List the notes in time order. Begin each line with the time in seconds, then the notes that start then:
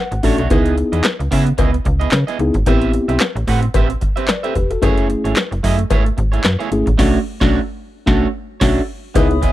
Already playing: F#5
0.11 G#1, muted clean electric guitar stroke, closed hi-hat
0.23 A1 A3 C#4 D4 F#4 A4 C#5 E5, kick, open hi-hat
0.38 B1 A3 D4 F#4 C#5, closed hi-hat
0.50 C#2 B3 D#4 E4 G#4 D#5, kick, closed hi-hat, cowbell
0.66 closed hi-hat
0.77 muted clean electric guitar stroke, closed hi-hat
0.92 E2 B3 E4 G#4 D#5, closed hi-hat
1.04 muted clean electric guitar stroke, snare, clap, closed hi-hat, cowbell
1.19 C#2, muted clean electric guitar stroke, closed hi-hat
1.31 C#3 B3 E4 G#4 E5, kick, open hi-hat
1.46 muted clean electric guitar stroke, closed hi-hat
1.58 C#2 B3 E4 G#4 D#5, kick, closed hi-hat, cowbell
1.73 muted clean electric guitar stroke, closed hi-hat
1.85 C#2, muted clean electric guitar stroke, kick, closed hi-hat
2.00 B3 E4 G#4 D#5, closed hi-hat
2.12 C#3, muted clean electric guitar stroke, snare, clap, closed hi-hat, cowbell
2.27 B3 E4 G#4 D#5, closed hi-hat
2.39 C#2 B3 D#4 E4 G#4, muted clean electric guitar stroke, closed hi-hat
2.54 G#1, muted clean electric guitar stroke, kick, closed hi-hat
2.66 A1 B3 C4 E4 G4 B4 E5, kick, closed hi-hat, cowbell
2.82 closed hi-hat
2.93 muted clean electric guitar stroke, closed hi-hat
3.08 B1 C4 G4 B4 E5, closed hi-hat
3.20 muted clean electric guitar stroke, snare, clap, closed hi-hat, cowbell
3.36 A1, muted clean electric guitar stroke, closed hi-hat
3.47 A2 C4 G4 B4 F#5, kick, open hi-hat
3.63 muted clean electric guitar stroke, closed hi-hat
3.74 A1 C4 G4 B4 E5, kick, closed hi-hat, cowbell
3.90 muted clean electric guitar stroke, closed hi-hat
4.01 muted clean electric guitar stroke, kick, closed hi-hat
4.16 C4 G4 B4 C5 E5, closed hi-hat
4.28 B4 D5, muted clean electric guitar stroke, snare, clap, closed hi-hat, cowbell
4.43 C4 G4 A4 B4 C5 E5, closed hi-hat
4.55 E1 G4 B4, muted clean electric guitar stroke, kick, closed hi-hat
4.71 F#4 A4, muted clean electric guitar stroke, closed hi-hat
4.82 F#1 A3 C#4 E4 G#4 C#5, kick, closed hi-hat, cowbell
4.98 closed hi-hat
5.09 muted clean electric guitar stroke, closed hi-hat
5.24 G#1 A3 E4 G#4 C#5, closed hi-hat
5.36 muted clean electric guitar stroke, snare, clap, closed hi-hat, cowbell
5.51 F#1, muted clean electric guitar stroke, closed hi-hat
5.63 F#2 A3 E4 G#4 D#5, kick, open hi-hat
5.79 muted clean electric guitar stroke, closed hi-hat
5.90 G#1 A3 E4 G#4 C#5, kick, closed hi-hat, cowbell
6.06 muted clean electric guitar stroke, closed hi-hat
6.17 G#1, muted clean electric guitar stroke, kick, closed hi-hat
6.32 A3 E4 G#4 C#5, closed hi-hat
6.44 F#2, muted clean electric guitar stroke, snare, clap, closed hi-hat, cowbell
6.59 A3 E4 G#4 C#5, closed hi-hat
6.71 G#1 A3 C#4 E4 G#4, muted clean electric guitar stroke, closed hi-hat
6.86 A1, muted clean electric guitar stroke, kick, closed hi-hat
6.98 B1 A3 C#4 D4 F#4 C#5, kick, snare, crash
7.40 B1 A3 C#4 D4 F#4 C#5, kick, snare
8.06 B1 A3 C#4 D4 F#4 C#5, kick, snare
8.60 B1 A3 C#4 D4 F#4 C#5, kick, snare, crash
9.14 C#2 B3 D#4 E4 G#4 C#5 D#5 E5 B5 D#6, kick, closed hi-hat, cowbell
9.30 muted clean electric guitar stroke, closed hi-hat
9.41 B3 E4 G#4 D#5, kick, closed hi-hat